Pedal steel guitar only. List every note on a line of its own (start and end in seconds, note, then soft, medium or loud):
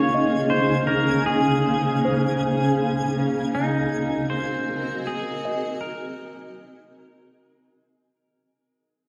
0.00 0.49 C#5 medium
0.50 0.86 C5 medium
0.87 1.28 A#4 medium
1.26 2.74 G#4 medium
3.55 4.33 D#4 medium
4.30 5.09 C5 medium
5.07 5.80 G#4 medium
5.81 7.72 A#4 medium